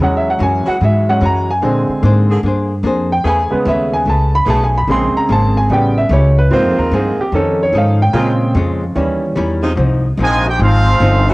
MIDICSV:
0, 0, Header, 1, 8, 480
1, 0, Start_track
1, 0, Key_signature, -4, "major"
1, 0, Tempo, 408163
1, 1911, Time_signature, 4, 2, 24, 8
1, 13333, End_track
2, 0, Start_track
2, 0, Title_t, "Trumpet section"
2, 0, Program_c, 0, 61
2, 12021, Note_on_c, 0, 75, 98
2, 12025, Note_on_c, 0, 65, 93
2, 12027, Note_on_c, 0, 72, 93
2, 12027, Note_on_c, 0, 80, 115
2, 12299, Note_off_c, 0, 75, 0
2, 12301, Note_off_c, 0, 65, 0
2, 12302, Note_off_c, 0, 72, 0
2, 12302, Note_off_c, 0, 80, 0
2, 12344, Note_on_c, 0, 63, 88
2, 12344, Note_on_c, 0, 79, 103
2, 12351, Note_on_c, 0, 72, 88
2, 12354, Note_on_c, 0, 68, 90
2, 12482, Note_off_c, 0, 63, 0
2, 12487, Note_off_c, 0, 79, 0
2, 12488, Note_off_c, 0, 68, 0
2, 12491, Note_off_c, 0, 72, 0
2, 12496, Note_on_c, 0, 63, 89
2, 12502, Note_on_c, 0, 68, 88
2, 12507, Note_on_c, 0, 72, 93
2, 12508, Note_on_c, 0, 77, 105
2, 13234, Note_off_c, 0, 63, 0
2, 13237, Note_off_c, 0, 68, 0
2, 13240, Note_off_c, 0, 72, 0
2, 13240, Note_off_c, 0, 77, 0
2, 13333, End_track
3, 0, Start_track
3, 0, Title_t, "Grand piano"
3, 0, Program_c, 1, 0
3, 18, Note_on_c, 1, 56, 45
3, 19, Note_on_c, 1, 54, 54
3, 25, Note_on_c, 1, 61, 55
3, 40, Note_on_c, 1, 78, 66
3, 173, Note_off_c, 1, 78, 0
3, 200, Note_on_c, 1, 76, 68
3, 333, Note_off_c, 1, 76, 0
3, 354, Note_on_c, 1, 78, 71
3, 490, Note_off_c, 1, 78, 0
3, 503, Note_on_c, 1, 80, 80
3, 795, Note_off_c, 1, 80, 0
3, 799, Note_on_c, 1, 78, 78
3, 953, Note_off_c, 1, 78, 0
3, 993, Note_on_c, 1, 76, 72
3, 1263, Note_off_c, 1, 54, 0
3, 1265, Note_off_c, 1, 56, 0
3, 1267, Note_off_c, 1, 61, 0
3, 1279, Note_off_c, 1, 76, 0
3, 1281, Note_on_c, 1, 54, 44
3, 1282, Note_on_c, 1, 56, 41
3, 1285, Note_on_c, 1, 61, 51
3, 1287, Note_on_c, 1, 78, 80
3, 1423, Note_off_c, 1, 54, 0
3, 1423, Note_off_c, 1, 56, 0
3, 1425, Note_off_c, 1, 61, 0
3, 1437, Note_off_c, 1, 78, 0
3, 1475, Note_on_c, 1, 82, 85
3, 1760, Note_off_c, 1, 82, 0
3, 1770, Note_on_c, 1, 80, 81
3, 1915, Note_on_c, 1, 50, 54
3, 1922, Note_on_c, 1, 56, 45
3, 1924, Note_on_c, 1, 60, 57
3, 2357, Note_off_c, 1, 80, 0
3, 2668, Note_off_c, 1, 50, 0
3, 2671, Note_off_c, 1, 56, 0
3, 2672, Note_off_c, 1, 60, 0
3, 3673, Note_on_c, 1, 79, 81
3, 3827, Note_off_c, 1, 79, 0
3, 3849, Note_on_c, 1, 80, 88
3, 4122, Note_on_c, 1, 49, 52
3, 4132, Note_on_c, 1, 56, 45
3, 4137, Note_on_c, 1, 71, 59
3, 4138, Note_on_c, 1, 59, 53
3, 4143, Note_off_c, 1, 80, 0
3, 4298, Note_off_c, 1, 71, 0
3, 4331, Note_on_c, 1, 76, 67
3, 4624, Note_off_c, 1, 76, 0
3, 4627, Note_on_c, 1, 80, 89
3, 4741, Note_off_c, 1, 49, 0
3, 4746, Note_off_c, 1, 56, 0
3, 4749, Note_off_c, 1, 59, 0
3, 4782, Note_off_c, 1, 80, 0
3, 4815, Note_on_c, 1, 81, 74
3, 5105, Note_off_c, 1, 81, 0
3, 5118, Note_on_c, 1, 83, 98
3, 5267, Note_off_c, 1, 83, 0
3, 5290, Note_on_c, 1, 81, 82
3, 5431, Note_off_c, 1, 81, 0
3, 5454, Note_on_c, 1, 80, 76
3, 5592, Note_off_c, 1, 80, 0
3, 5616, Note_on_c, 1, 83, 80
3, 5749, Note_on_c, 1, 49, 51
3, 5753, Note_off_c, 1, 83, 0
3, 5754, Note_on_c, 1, 56, 46
3, 5764, Note_on_c, 1, 60, 59
3, 5774, Note_on_c, 1, 84, 91
3, 6063, Note_off_c, 1, 84, 0
3, 6078, Note_on_c, 1, 82, 87
3, 6226, Note_off_c, 1, 82, 0
3, 6259, Note_on_c, 1, 81, 86
3, 6545, Note_off_c, 1, 81, 0
3, 6553, Note_on_c, 1, 80, 84
3, 6655, Note_off_c, 1, 49, 0
3, 6657, Note_off_c, 1, 56, 0
3, 6662, Note_off_c, 1, 60, 0
3, 6702, Note_off_c, 1, 80, 0
3, 6711, Note_on_c, 1, 49, 49
3, 6715, Note_on_c, 1, 55, 46
3, 6726, Note_on_c, 1, 59, 57
3, 6740, Note_on_c, 1, 79, 71
3, 7025, Note_off_c, 1, 79, 0
3, 7029, Note_on_c, 1, 76, 77
3, 7066, Note_off_c, 1, 49, 0
3, 7068, Note_off_c, 1, 55, 0
3, 7074, Note_off_c, 1, 59, 0
3, 7180, Note_off_c, 1, 76, 0
3, 7205, Note_on_c, 1, 73, 72
3, 7497, Note_off_c, 1, 73, 0
3, 7508, Note_on_c, 1, 71, 78
3, 7654, Note_on_c, 1, 53, 55
3, 7659, Note_off_c, 1, 71, 0
3, 7661, Note_on_c, 1, 58, 47
3, 7665, Note_on_c, 1, 60, 56
3, 7681, Note_on_c, 1, 72, 84
3, 7975, Note_off_c, 1, 72, 0
3, 7979, Note_on_c, 1, 70, 76
3, 8134, Note_off_c, 1, 70, 0
3, 8165, Note_on_c, 1, 68, 69
3, 8457, Note_off_c, 1, 68, 0
3, 8476, Note_on_c, 1, 67, 74
3, 8567, Note_off_c, 1, 53, 0
3, 8571, Note_off_c, 1, 58, 0
3, 8573, Note_off_c, 1, 60, 0
3, 8623, Note_off_c, 1, 67, 0
3, 8631, Note_on_c, 1, 51, 49
3, 8640, Note_on_c, 1, 69, 64
3, 8645, Note_on_c, 1, 61, 55
3, 8946, Note_off_c, 1, 69, 0
3, 8970, Note_on_c, 1, 73, 76
3, 9110, Note_off_c, 1, 73, 0
3, 9148, Note_on_c, 1, 77, 77
3, 9430, Note_off_c, 1, 77, 0
3, 9433, Note_on_c, 1, 79, 85
3, 9537, Note_off_c, 1, 51, 0
3, 9544, Note_off_c, 1, 61, 0
3, 9585, Note_on_c, 1, 49, 49
3, 9593, Note_on_c, 1, 60, 58
3, 9597, Note_on_c, 1, 56, 46
3, 10024, Note_off_c, 1, 79, 0
3, 10339, Note_off_c, 1, 49, 0
3, 10343, Note_off_c, 1, 60, 0
3, 10345, Note_off_c, 1, 56, 0
3, 10529, Note_on_c, 1, 52, 51
3, 10535, Note_on_c, 1, 55, 48
3, 10539, Note_on_c, 1, 61, 59
3, 11292, Note_off_c, 1, 52, 0
3, 11295, Note_off_c, 1, 55, 0
3, 11297, Note_off_c, 1, 61, 0
3, 13333, End_track
4, 0, Start_track
4, 0, Title_t, "Hollow-body jazz guitar"
4, 0, Program_c, 2, 26
4, 0, Note_on_c, 2, 52, 50
4, 7, Note_on_c, 2, 56, 52
4, 26, Note_on_c, 2, 61, 45
4, 39, Note_on_c, 2, 66, 52
4, 327, Note_off_c, 2, 52, 0
4, 332, Note_off_c, 2, 56, 0
4, 342, Note_off_c, 2, 61, 0
4, 349, Note_off_c, 2, 66, 0
4, 456, Note_on_c, 2, 52, 60
4, 462, Note_on_c, 2, 56, 67
4, 473, Note_on_c, 2, 61, 62
4, 486, Note_on_c, 2, 66, 68
4, 797, Note_off_c, 2, 52, 0
4, 800, Note_off_c, 2, 56, 0
4, 806, Note_off_c, 2, 61, 0
4, 812, Note_off_c, 2, 66, 0
4, 946, Note_on_c, 2, 52, 50
4, 971, Note_on_c, 2, 56, 54
4, 976, Note_on_c, 2, 61, 50
4, 989, Note_on_c, 2, 66, 53
4, 1282, Note_off_c, 2, 52, 0
4, 1294, Note_off_c, 2, 56, 0
4, 1297, Note_off_c, 2, 61, 0
4, 1303, Note_off_c, 2, 66, 0
4, 1418, Note_on_c, 2, 52, 62
4, 1427, Note_on_c, 2, 56, 66
4, 1434, Note_on_c, 2, 61, 69
4, 1445, Note_on_c, 2, 66, 78
4, 1757, Note_off_c, 2, 52, 0
4, 1762, Note_off_c, 2, 56, 0
4, 1765, Note_off_c, 2, 61, 0
4, 1770, Note_off_c, 2, 66, 0
4, 1906, Note_on_c, 2, 58, 51
4, 1914, Note_on_c, 2, 62, 52
4, 1932, Note_on_c, 2, 68, 48
4, 1937, Note_on_c, 2, 72, 52
4, 2241, Note_off_c, 2, 58, 0
4, 2244, Note_off_c, 2, 62, 0
4, 2253, Note_off_c, 2, 68, 0
4, 2256, Note_off_c, 2, 72, 0
4, 2385, Note_on_c, 2, 58, 68
4, 2401, Note_on_c, 2, 62, 70
4, 2414, Note_on_c, 2, 68, 76
4, 2416, Note_on_c, 2, 72, 80
4, 2719, Note_off_c, 2, 58, 0
4, 2727, Note_off_c, 2, 62, 0
4, 2734, Note_off_c, 2, 68, 0
4, 2735, Note_off_c, 2, 72, 0
4, 2866, Note_on_c, 2, 58, 50
4, 2889, Note_on_c, 2, 62, 55
4, 2895, Note_on_c, 2, 68, 66
4, 2910, Note_on_c, 2, 72, 58
4, 3199, Note_off_c, 2, 58, 0
4, 3211, Note_off_c, 2, 62, 0
4, 3214, Note_off_c, 2, 68, 0
4, 3221, Note_off_c, 2, 72, 0
4, 3338, Note_on_c, 2, 58, 67
4, 3347, Note_on_c, 2, 62, 70
4, 3364, Note_on_c, 2, 68, 77
4, 3374, Note_on_c, 2, 72, 81
4, 3674, Note_off_c, 2, 58, 0
4, 3679, Note_off_c, 2, 62, 0
4, 3687, Note_off_c, 2, 68, 0
4, 3692, Note_off_c, 2, 72, 0
4, 3822, Note_on_c, 2, 57, 51
4, 3833, Note_on_c, 2, 61, 49
4, 3858, Note_on_c, 2, 68, 51
4, 3868, Note_on_c, 2, 71, 48
4, 4156, Note_off_c, 2, 57, 0
4, 4161, Note_off_c, 2, 61, 0
4, 4173, Note_off_c, 2, 68, 0
4, 4178, Note_off_c, 2, 71, 0
4, 4312, Note_on_c, 2, 57, 61
4, 4321, Note_on_c, 2, 61, 65
4, 4329, Note_on_c, 2, 68, 68
4, 4338, Note_on_c, 2, 71, 71
4, 4639, Note_off_c, 2, 57, 0
4, 4644, Note_off_c, 2, 61, 0
4, 4648, Note_off_c, 2, 68, 0
4, 4652, Note_off_c, 2, 71, 0
4, 4789, Note_on_c, 2, 57, 51
4, 4807, Note_on_c, 2, 61, 48
4, 4816, Note_on_c, 2, 68, 49
4, 4837, Note_on_c, 2, 71, 50
4, 5117, Note_off_c, 2, 57, 0
4, 5126, Note_off_c, 2, 61, 0
4, 5131, Note_off_c, 2, 68, 0
4, 5141, Note_off_c, 2, 71, 0
4, 5267, Note_on_c, 2, 57, 66
4, 5276, Note_on_c, 2, 61, 62
4, 5290, Note_on_c, 2, 68, 72
4, 5292, Note_on_c, 2, 71, 70
4, 5596, Note_off_c, 2, 57, 0
4, 5600, Note_off_c, 2, 61, 0
4, 5607, Note_off_c, 2, 68, 0
4, 5608, Note_off_c, 2, 71, 0
4, 5738, Note_on_c, 2, 58, 45
4, 5757, Note_on_c, 2, 61, 53
4, 5767, Note_on_c, 2, 68, 56
4, 5784, Note_on_c, 2, 72, 48
4, 6070, Note_off_c, 2, 58, 0
4, 6080, Note_off_c, 2, 61, 0
4, 6085, Note_off_c, 2, 68, 0
4, 6093, Note_off_c, 2, 72, 0
4, 6229, Note_on_c, 2, 58, 62
4, 6236, Note_on_c, 2, 61, 71
4, 6242, Note_on_c, 2, 68, 65
4, 6256, Note_on_c, 2, 72, 64
4, 6555, Note_off_c, 2, 58, 0
4, 6559, Note_off_c, 2, 61, 0
4, 6562, Note_off_c, 2, 68, 0
4, 6569, Note_off_c, 2, 72, 0
4, 6703, Note_on_c, 2, 57, 45
4, 6727, Note_on_c, 2, 61, 50
4, 6730, Note_on_c, 2, 67, 55
4, 6748, Note_on_c, 2, 71, 52
4, 7032, Note_off_c, 2, 57, 0
4, 7044, Note_off_c, 2, 61, 0
4, 7045, Note_off_c, 2, 67, 0
4, 7054, Note_off_c, 2, 71, 0
4, 7180, Note_on_c, 2, 57, 65
4, 7187, Note_on_c, 2, 61, 67
4, 7201, Note_on_c, 2, 67, 73
4, 7205, Note_on_c, 2, 71, 64
4, 7510, Note_off_c, 2, 57, 0
4, 7513, Note_off_c, 2, 61, 0
4, 7520, Note_off_c, 2, 67, 0
4, 7523, Note_off_c, 2, 71, 0
4, 7659, Note_on_c, 2, 44, 46
4, 7686, Note_on_c, 2, 53, 54
4, 7696, Note_on_c, 2, 60, 54
4, 7711, Note_on_c, 2, 63, 52
4, 7989, Note_off_c, 2, 44, 0
4, 8003, Note_off_c, 2, 53, 0
4, 8008, Note_off_c, 2, 60, 0
4, 8015, Note_off_c, 2, 63, 0
4, 8149, Note_on_c, 2, 44, 66
4, 8154, Note_on_c, 2, 53, 67
4, 8158, Note_on_c, 2, 60, 72
4, 8169, Note_on_c, 2, 63, 71
4, 8474, Note_off_c, 2, 44, 0
4, 8477, Note_off_c, 2, 53, 0
4, 8479, Note_off_c, 2, 60, 0
4, 8484, Note_off_c, 2, 63, 0
4, 8618, Note_on_c, 2, 53, 47
4, 8635, Note_on_c, 2, 61, 56
4, 8647, Note_on_c, 2, 63, 57
4, 8662, Note_on_c, 2, 69, 54
4, 8949, Note_off_c, 2, 53, 0
4, 8958, Note_off_c, 2, 61, 0
4, 8964, Note_off_c, 2, 63, 0
4, 8971, Note_off_c, 2, 69, 0
4, 9095, Note_on_c, 2, 53, 66
4, 9108, Note_on_c, 2, 61, 61
4, 9112, Note_on_c, 2, 63, 72
4, 9124, Note_on_c, 2, 69, 74
4, 9428, Note_off_c, 2, 53, 0
4, 9435, Note_off_c, 2, 61, 0
4, 9436, Note_off_c, 2, 63, 0
4, 9443, Note_off_c, 2, 69, 0
4, 9567, Note_on_c, 2, 46, 51
4, 9580, Note_on_c, 2, 56, 50
4, 9596, Note_on_c, 2, 61, 57
4, 9613, Note_on_c, 2, 65, 56
4, 9904, Note_off_c, 2, 46, 0
4, 9911, Note_off_c, 2, 56, 0
4, 9919, Note_off_c, 2, 61, 0
4, 9928, Note_off_c, 2, 65, 0
4, 10058, Note_on_c, 2, 46, 70
4, 10075, Note_on_c, 2, 56, 83
4, 10075, Note_on_c, 2, 61, 72
4, 10084, Note_on_c, 2, 65, 77
4, 10391, Note_off_c, 2, 46, 0
4, 10399, Note_off_c, 2, 56, 0
4, 10399, Note_off_c, 2, 61, 0
4, 10404, Note_off_c, 2, 65, 0
4, 10532, Note_on_c, 2, 51, 55
4, 10544, Note_on_c, 2, 55, 58
4, 10556, Note_on_c, 2, 61, 67
4, 10570, Note_on_c, 2, 64, 61
4, 10869, Note_off_c, 2, 51, 0
4, 10875, Note_off_c, 2, 55, 0
4, 10881, Note_off_c, 2, 61, 0
4, 10887, Note_off_c, 2, 64, 0
4, 11003, Note_on_c, 2, 51, 68
4, 11006, Note_on_c, 2, 55, 79
4, 11021, Note_on_c, 2, 61, 77
4, 11027, Note_on_c, 2, 64, 84
4, 11345, Note_off_c, 2, 51, 0
4, 11346, Note_off_c, 2, 55, 0
4, 11354, Note_off_c, 2, 61, 0
4, 11357, Note_off_c, 2, 64, 0
4, 11473, Note_on_c, 2, 44, 59
4, 11492, Note_on_c, 2, 53, 59
4, 11499, Note_on_c, 2, 60, 58
4, 11517, Note_on_c, 2, 63, 59
4, 11821, Note_off_c, 2, 44, 0
4, 11830, Note_off_c, 2, 53, 0
4, 11834, Note_off_c, 2, 60, 0
4, 11843, Note_off_c, 2, 63, 0
4, 11981, Note_on_c, 2, 44, 63
4, 11987, Note_on_c, 2, 53, 73
4, 12001, Note_on_c, 2, 60, 69
4, 12008, Note_on_c, 2, 63, 68
4, 12316, Note_off_c, 2, 44, 0
4, 12319, Note_off_c, 2, 53, 0
4, 12326, Note_off_c, 2, 60, 0
4, 12330, Note_off_c, 2, 63, 0
4, 12473, Note_on_c, 2, 44, 54
4, 12482, Note_on_c, 2, 53, 50
4, 12501, Note_on_c, 2, 60, 56
4, 12507, Note_on_c, 2, 63, 54
4, 12803, Note_off_c, 2, 44, 0
4, 12808, Note_off_c, 2, 53, 0
4, 12817, Note_off_c, 2, 60, 0
4, 12821, Note_off_c, 2, 63, 0
4, 12944, Note_on_c, 2, 44, 69
4, 12957, Note_on_c, 2, 53, 74
4, 12961, Note_on_c, 2, 60, 75
4, 12967, Note_on_c, 2, 63, 75
4, 13280, Note_off_c, 2, 44, 0
4, 13287, Note_off_c, 2, 53, 0
4, 13288, Note_off_c, 2, 60, 0
4, 13292, Note_off_c, 2, 63, 0
4, 13333, End_track
5, 0, Start_track
5, 0, Title_t, "Saxophone section"
5, 0, Program_c, 3, 65
5, 773, Note_on_c, 3, 66, 93
5, 776, Note_on_c, 3, 61, 78
5, 781, Note_on_c, 3, 52, 82
5, 782, Note_on_c, 3, 56, 81
5, 890, Note_off_c, 3, 66, 0
5, 892, Note_off_c, 3, 61, 0
5, 895, Note_off_c, 3, 52, 0
5, 895, Note_off_c, 3, 56, 0
5, 2690, Note_on_c, 3, 60, 78
5, 2697, Note_on_c, 3, 68, 98
5, 2700, Note_on_c, 3, 58, 83
5, 2703, Note_on_c, 3, 50, 96
5, 2806, Note_off_c, 3, 60, 0
5, 2810, Note_off_c, 3, 68, 0
5, 2812, Note_off_c, 3, 58, 0
5, 2814, Note_off_c, 3, 50, 0
5, 3794, Note_on_c, 3, 68, 107
5, 3797, Note_on_c, 3, 57, 83
5, 3805, Note_on_c, 3, 49, 92
5, 3816, Note_on_c, 3, 59, 90
5, 4019, Note_off_c, 3, 68, 0
5, 4021, Note_off_c, 3, 57, 0
5, 4026, Note_off_c, 3, 49, 0
5, 4032, Note_off_c, 3, 59, 0
5, 5243, Note_on_c, 3, 59, 87
5, 5245, Note_on_c, 3, 49, 96
5, 5253, Note_on_c, 3, 57, 88
5, 5253, Note_on_c, 3, 68, 102
5, 5462, Note_off_c, 3, 59, 0
5, 5463, Note_off_c, 3, 49, 0
5, 5469, Note_off_c, 3, 57, 0
5, 5469, Note_off_c, 3, 68, 0
5, 5752, Note_on_c, 3, 58, 79
5, 5753, Note_on_c, 3, 68, 94
5, 5759, Note_on_c, 3, 49, 87
5, 5767, Note_on_c, 3, 60, 77
5, 6703, Note_off_c, 3, 58, 0
5, 6704, Note_off_c, 3, 68, 0
5, 6707, Note_off_c, 3, 49, 0
5, 6711, Note_off_c, 3, 60, 0
5, 7654, Note_on_c, 3, 65, 106
5, 7655, Note_on_c, 3, 60, 90
5, 7662, Note_on_c, 3, 51, 96
5, 7664, Note_on_c, 3, 56, 91
5, 8614, Note_off_c, 3, 65, 0
5, 8615, Note_off_c, 3, 60, 0
5, 8618, Note_off_c, 3, 51, 0
5, 8619, Note_off_c, 3, 56, 0
5, 9555, Note_on_c, 3, 65, 109
5, 9557, Note_on_c, 3, 49, 93
5, 9564, Note_on_c, 3, 56, 91
5, 9570, Note_on_c, 3, 58, 94
5, 9777, Note_off_c, 3, 65, 0
5, 9778, Note_off_c, 3, 49, 0
5, 9782, Note_off_c, 3, 56, 0
5, 9786, Note_off_c, 3, 58, 0
5, 11311, Note_on_c, 3, 63, 109
5, 11315, Note_on_c, 3, 53, 90
5, 11316, Note_on_c, 3, 48, 99
5, 11320, Note_on_c, 3, 56, 92
5, 11432, Note_off_c, 3, 63, 0
5, 11434, Note_off_c, 3, 53, 0
5, 11435, Note_off_c, 3, 48, 0
5, 11438, Note_off_c, 3, 56, 0
5, 13258, Note_on_c, 3, 66, 114
5, 13259, Note_on_c, 3, 52, 104
5, 13267, Note_on_c, 3, 57, 92
5, 13268, Note_on_c, 3, 61, 90
5, 13333, Note_off_c, 3, 52, 0
5, 13333, Note_off_c, 3, 57, 0
5, 13333, Note_off_c, 3, 61, 0
5, 13333, Note_off_c, 3, 66, 0
5, 13333, End_track
6, 0, Start_track
6, 0, Title_t, "Trombone section"
6, 0, Program_c, 4, 61
6, 12008, Note_on_c, 4, 51, 92
6, 12015, Note_on_c, 4, 53, 98
6, 12017, Note_on_c, 4, 56, 94
6, 12292, Note_off_c, 4, 51, 0
6, 12296, Note_off_c, 4, 53, 0
6, 12296, Note_off_c, 4, 56, 0
6, 12331, Note_on_c, 4, 67, 88
6, 12472, Note_on_c, 4, 60, 92
6, 12472, Note_on_c, 4, 65, 92
6, 12481, Note_off_c, 4, 67, 0
6, 12481, Note_on_c, 4, 53, 96
6, 13222, Note_off_c, 4, 60, 0
6, 13222, Note_off_c, 4, 65, 0
6, 13226, Note_off_c, 4, 53, 0
6, 13276, Note_on_c, 4, 60, 85
6, 13279, Note_on_c, 4, 53, 85
6, 13282, Note_on_c, 4, 65, 83
6, 13333, Note_off_c, 4, 53, 0
6, 13333, Note_off_c, 4, 60, 0
6, 13333, Note_off_c, 4, 65, 0
6, 13333, End_track
7, 0, Start_track
7, 0, Title_t, "Upright bass"
7, 0, Program_c, 5, 32
7, 0, Note_on_c, 5, 40, 84
7, 457, Note_off_c, 5, 40, 0
7, 472, Note_on_c, 5, 42, 97
7, 766, Note_off_c, 5, 42, 0
7, 952, Note_on_c, 5, 44, 89
7, 1417, Note_off_c, 5, 44, 0
7, 1426, Note_on_c, 5, 42, 90
7, 1894, Note_off_c, 5, 42, 0
7, 1911, Note_on_c, 5, 46, 84
7, 2205, Note_off_c, 5, 46, 0
7, 2386, Note_on_c, 5, 44, 95
7, 2852, Note_off_c, 5, 44, 0
7, 2858, Note_on_c, 5, 43, 88
7, 3321, Note_off_c, 5, 43, 0
7, 3328, Note_on_c, 5, 41, 93
7, 3802, Note_off_c, 5, 41, 0
7, 3811, Note_on_c, 5, 40, 80
7, 4111, Note_off_c, 5, 40, 0
7, 4297, Note_on_c, 5, 39, 94
7, 4765, Note_off_c, 5, 39, 0
7, 4772, Note_on_c, 5, 37, 83
7, 5242, Note_off_c, 5, 37, 0
7, 5248, Note_on_c, 5, 35, 91
7, 5719, Note_off_c, 5, 35, 0
7, 5732, Note_on_c, 5, 34, 82
7, 6029, Note_off_c, 5, 34, 0
7, 6220, Note_on_c, 5, 32, 96
7, 6683, Note_off_c, 5, 32, 0
7, 6699, Note_on_c, 5, 33, 84
7, 7157, Note_off_c, 5, 33, 0
7, 7164, Note_on_c, 5, 37, 94
7, 7635, Note_off_c, 5, 37, 0
7, 7651, Note_on_c, 5, 44, 87
7, 7812, Note_off_c, 5, 44, 0
7, 7812, Note_on_c, 5, 41, 58
7, 7967, Note_off_c, 5, 41, 0
7, 7974, Note_on_c, 5, 39, 65
7, 8123, Note_off_c, 5, 39, 0
7, 8131, Note_on_c, 5, 43, 93
7, 8426, Note_off_c, 5, 43, 0
7, 8609, Note_on_c, 5, 41, 88
7, 9078, Note_off_c, 5, 41, 0
7, 9085, Note_on_c, 5, 44, 90
7, 9556, Note_off_c, 5, 44, 0
7, 9564, Note_on_c, 5, 46, 86
7, 10037, Note_off_c, 5, 46, 0
7, 10051, Note_on_c, 5, 41, 98
7, 10521, Note_off_c, 5, 41, 0
7, 10532, Note_on_c, 5, 39, 91
7, 11002, Note_off_c, 5, 39, 0
7, 11017, Note_on_c, 5, 40, 95
7, 11486, Note_off_c, 5, 40, 0
7, 11492, Note_on_c, 5, 36, 92
7, 11959, Note_off_c, 5, 36, 0
7, 11966, Note_on_c, 5, 34, 96
7, 12442, Note_off_c, 5, 34, 0
7, 12458, Note_on_c, 5, 32, 91
7, 12930, Note_off_c, 5, 32, 0
7, 12937, Note_on_c, 5, 31, 102
7, 13333, Note_off_c, 5, 31, 0
7, 13333, End_track
8, 0, Start_track
8, 0, Title_t, "Muted upright bass strokes"
8, 793, Note_on_c, 9, 29, 41
8, 911, Note_off_c, 9, 29, 0
8, 2220, Note_on_c, 9, 29, 40
8, 2338, Note_off_c, 9, 29, 0
8, 4147, Note_on_c, 9, 29, 39
8, 4264, Note_off_c, 9, 29, 0
8, 6049, Note_on_c, 9, 29, 39
8, 6166, Note_off_c, 9, 29, 0
8, 8439, Note_on_c, 9, 29, 43
8, 8556, Note_off_c, 9, 29, 0
8, 13333, End_track
0, 0, End_of_file